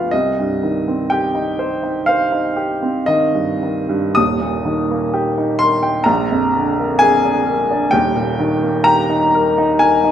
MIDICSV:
0, 0, Header, 1, 2, 480
1, 0, Start_track
1, 0, Key_signature, -3, "minor"
1, 0, Tempo, 985222
1, 57, Time_signature, 4, 2, 24, 8
1, 1496, Tempo, 1102941
1, 1976, Tempo, 980392
1, 2456, Tempo, 937500
1, 4997, End_track
2, 0, Start_track
2, 0, Title_t, "Upright piano"
2, 0, Program_c, 0, 0
2, 0, Control_c, 0, 64, 127
2, 0, Note_on_c, 0, 31, 61
2, 0, Note_on_c, 0, 38, 49
2, 0, Note_on_c, 0, 53, 51
2, 0, Note_on_c, 0, 59, 49
2, 0, Note_on_c, 0, 65, 56
2, 0, Note_on_c, 0, 67, 60
2, 0, Note_on_c, 0, 71, 52
2, 0, Note_on_c, 0, 77, 91
2, 0, Note_on_c, 0, 79, 70
2, 53, Note_off_c, 0, 77, 0
2, 55, Note_on_c, 0, 75, 85
2, 63, Note_off_c, 0, 65, 0
2, 65, Note_off_c, 0, 38, 0
2, 65, Note_off_c, 0, 71, 0
2, 65, Control_c, 0, 64, 0
2, 66, Note_off_c, 0, 53, 0
2, 66, Note_on_c, 0, 36, 52
2, 67, Note_off_c, 0, 67, 0
2, 68, Note_off_c, 0, 79, 0
2, 69, Note_off_c, 0, 31, 0
2, 69, Note_off_c, 0, 59, 0
2, 144, Control_c, 0, 64, 127
2, 190, Note_on_c, 0, 43, 45
2, 307, Note_on_c, 0, 51, 49
2, 377, Note_off_c, 0, 43, 0
2, 428, Note_on_c, 0, 60, 47
2, 495, Note_off_c, 0, 51, 0
2, 535, Note_on_c, 0, 79, 84
2, 538, Note_off_c, 0, 75, 0
2, 546, Note_on_c, 0, 67, 61
2, 614, Note_off_c, 0, 60, 0
2, 657, Note_on_c, 0, 63, 52
2, 730, Note_off_c, 0, 67, 0
2, 775, Note_on_c, 0, 72, 55
2, 844, Note_off_c, 0, 63, 0
2, 893, Note_on_c, 0, 63, 53
2, 963, Note_off_c, 0, 72, 0
2, 1005, Note_on_c, 0, 77, 86
2, 1009, Note_off_c, 0, 79, 0
2, 1017, Note_on_c, 0, 72, 61
2, 1084, Note_off_c, 0, 63, 0
2, 1132, Note_on_c, 0, 63, 53
2, 1207, Note_off_c, 0, 72, 0
2, 1250, Note_on_c, 0, 67, 57
2, 1325, Note_off_c, 0, 63, 0
2, 1377, Note_on_c, 0, 60, 49
2, 1446, Note_off_c, 0, 67, 0
2, 1492, Note_off_c, 0, 77, 0
2, 1492, Note_on_c, 0, 75, 96
2, 1500, Note_on_c, 0, 51, 66
2, 1565, Note_off_c, 0, 60, 0
2, 1617, Note_on_c, 0, 43, 50
2, 1684, Note_off_c, 0, 51, 0
2, 1739, Note_on_c, 0, 51, 56
2, 1811, Note_off_c, 0, 43, 0
2, 1853, Note_on_c, 0, 43, 57
2, 1932, Note_off_c, 0, 51, 0
2, 1962, Note_off_c, 0, 36, 0
2, 1965, Note_on_c, 0, 87, 93
2, 1972, Note_on_c, 0, 27, 61
2, 1974, Note_off_c, 0, 43, 0
2, 1974, Note_off_c, 0, 75, 0
2, 1974, Note_on_c, 0, 39, 58
2, 1983, Control_c, 0, 64, 0
2, 2061, Control_c, 0, 64, 127
2, 2092, Note_on_c, 0, 46, 56
2, 2210, Note_on_c, 0, 51, 57
2, 2288, Note_off_c, 0, 46, 0
2, 2336, Note_on_c, 0, 58, 55
2, 2403, Note_off_c, 0, 51, 0
2, 2447, Note_on_c, 0, 67, 61
2, 2526, Note_off_c, 0, 58, 0
2, 2571, Note_on_c, 0, 63, 54
2, 2644, Note_off_c, 0, 67, 0
2, 2678, Note_on_c, 0, 84, 101
2, 2688, Note_on_c, 0, 70, 61
2, 2690, Note_off_c, 0, 87, 0
2, 2766, Note_off_c, 0, 63, 0
2, 2801, Note_on_c, 0, 79, 67
2, 2885, Note_off_c, 0, 70, 0
2, 2908, Note_on_c, 0, 82, 81
2, 2915, Note_off_c, 0, 27, 0
2, 2916, Note_off_c, 0, 39, 0
2, 2917, Note_on_c, 0, 34, 76
2, 2928, Note_off_c, 0, 84, 0
2, 2929, Note_off_c, 0, 79, 0
2, 2945, Control_c, 0, 64, 0
2, 3005, Control_c, 0, 64, 127
2, 3053, Note_on_c, 0, 41, 55
2, 3176, Note_on_c, 0, 50, 57
2, 3247, Note_off_c, 0, 41, 0
2, 3294, Note_on_c, 0, 58, 52
2, 3367, Note_off_c, 0, 50, 0
2, 3395, Note_on_c, 0, 80, 120
2, 3401, Note_off_c, 0, 82, 0
2, 3406, Note_on_c, 0, 68, 69
2, 3484, Note_off_c, 0, 58, 0
2, 3525, Note_on_c, 0, 62, 56
2, 3598, Note_off_c, 0, 68, 0
2, 3639, Note_on_c, 0, 70, 59
2, 3716, Note_off_c, 0, 62, 0
2, 3763, Note_on_c, 0, 62, 62
2, 3832, Note_off_c, 0, 70, 0
2, 3853, Note_off_c, 0, 34, 0
2, 3866, Note_on_c, 0, 79, 98
2, 3873, Note_on_c, 0, 27, 64
2, 3874, Note_off_c, 0, 80, 0
2, 3875, Note_on_c, 0, 39, 67
2, 3882, Note_off_c, 0, 62, 0
2, 3892, Control_c, 0, 64, 0
2, 3965, Control_c, 0, 64, 127
2, 3993, Note_on_c, 0, 46, 54
2, 4115, Note_on_c, 0, 51, 62
2, 4191, Note_off_c, 0, 46, 0
2, 4235, Note_on_c, 0, 58, 51
2, 4314, Note_off_c, 0, 51, 0
2, 4343, Note_on_c, 0, 82, 103
2, 4355, Note_on_c, 0, 67, 64
2, 4358, Note_off_c, 0, 79, 0
2, 4435, Note_off_c, 0, 58, 0
2, 4474, Note_on_c, 0, 63, 61
2, 4556, Note_off_c, 0, 67, 0
2, 4602, Note_on_c, 0, 70, 66
2, 4676, Note_off_c, 0, 63, 0
2, 4723, Note_on_c, 0, 63, 71
2, 4801, Note_off_c, 0, 70, 0
2, 4831, Note_on_c, 0, 80, 99
2, 4837, Note_on_c, 0, 70, 61
2, 4842, Note_off_c, 0, 82, 0
2, 4921, Note_off_c, 0, 63, 0
2, 4958, Note_on_c, 0, 63, 65
2, 4997, Note_off_c, 0, 27, 0
2, 4997, Note_off_c, 0, 39, 0
2, 4997, Note_off_c, 0, 63, 0
2, 4997, Note_off_c, 0, 70, 0
2, 4997, Note_off_c, 0, 80, 0
2, 4997, End_track
0, 0, End_of_file